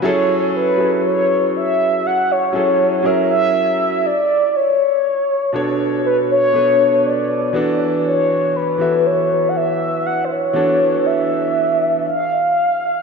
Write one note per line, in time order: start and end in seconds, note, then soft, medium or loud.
0.02 0.55 F#3 medium
0.02 0.56 C#4 medium
0.02 0.56 E4 medium
0.02 0.56 G#4 medium
0.02 0.57 A4 loud
0.02 0.52 C#5 loud
0.56 1.02 B4 medium
0.77 2.00 F#3 medium
0.77 2.00 C#4 medium
0.77 2.00 E4 medium
0.77 2.01 G#4 medium
0.77 2.01 A4 medium
1.06 1.52 C#5 loud
1.56 2.08 E5 loud
2.06 2.33 F#5 loud
2.31 3.07 C#5 loud
2.53 3.01 F#3 medium
2.53 3.02 C#4 medium
2.53 3.03 E4 medium
2.53 3.03 G#4 medium
2.53 3.05 A4 medium
3.02 3.83 F#3 medium
3.02 3.84 C#4 medium
3.02 3.84 E4 medium
3.02 3.85 G#4 medium
3.02 3.85 A#4 medium
3.02 3.30 E5 loud
3.31 4.08 E5 loud
4.06 4.58 D5 loud
4.56 6.05 C#5 loud
5.53 6.23 B2 medium
5.53 6.23 B3 medium
5.53 6.24 D4 medium
5.53 6.24 A4 medium
5.53 6.24 C#5 medium
6.06 6.17 B4 loud
6.31 7.07 C#5 loud
6.53 7.54 B2 medium
6.53 7.52 B3 medium
6.53 7.54 D4 medium
6.53 7.54 A4 medium
6.53 7.55 B4 medium
7.06 7.80 D5 loud
7.53 8.54 E3 medium
7.53 8.54 B3 medium
7.53 8.55 D4 medium
7.53 8.54 F#4 medium
7.53 8.55 A4 medium
8.06 8.58 C#5 loud
8.56 9.07 B4 medium
8.78 10.00 E3 medium
8.78 10.01 B3 medium
8.78 10.01 F#4 medium
8.78 10.01 A4 medium
8.78 10.02 E5 medium
9.06 9.48 C#5 medium
9.49 9.58 F#5 medium
9.57 10.08 E5 loud
10.06 10.26 F#5 loud
10.24 10.33 C5 medium
10.32 11.08 C#5 loud
10.53 11.93 E3 medium
10.53 11.93 B3 medium
10.53 11.94 D4 medium
10.53 11.93 F#4 medium
10.53 11.94 A4 medium
11.06 12.05 E5 loud
12.06 13.02 F5 loud